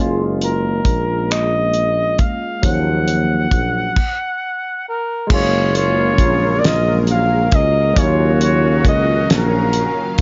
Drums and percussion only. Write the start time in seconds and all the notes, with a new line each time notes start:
0.41 closed hi-hat
0.85 kick, closed hi-hat
1.31 finger snap, closed hi-hat
1.74 closed hi-hat
2.19 kick, closed hi-hat
2.63 kick, closed hi-hat
3.08 closed hi-hat
3.51 kick, closed hi-hat
3.96 kick, crash
5.30 kick, crash
5.75 closed hi-hat
6.18 kick, closed hi-hat
6.64 snare, closed hi-hat
7.07 closed hi-hat
7.51 kick, closed hi-hat
7.96 kick, closed hi-hat
8.41 closed hi-hat
8.85 kick, closed hi-hat
9.30 snare, closed hi-hat
9.73 closed hi-hat
10.18 closed hi-hat